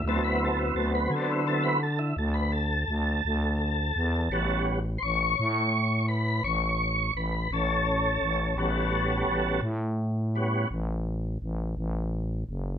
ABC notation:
X:1
M:12/8
L:1/16
Q:3/8=56
K:Amix
V:1 name="Tonewheel organ"
A B A E A B [^GA] E A B A E A B A8- A2- | A2 z2 [=c^c]6 B2 c4 B2 [CA]6- | [CA]6 z16 z2 |]
V:2 name="Tonewheel organ"
[F,B,=CE]8 [F,B,CE]2 z12 z2 | [G,B,CF]2 z16 z6 | [G,B,CF]6 z4 [G,B,CF]2 z12 |]
V:3 name="FM bass" clef=bass
D,,4 D,,2 D,6 D,,4 D,,2 D,,4 E,,2 | A,,,4 A,,,2 A,,6 A,,,4 A,,,2 A,,,4 A,,,2 | A,,,4 A,,,2 A,,6 A,,,4 A,,,2 A,,,4 F,,,2 |]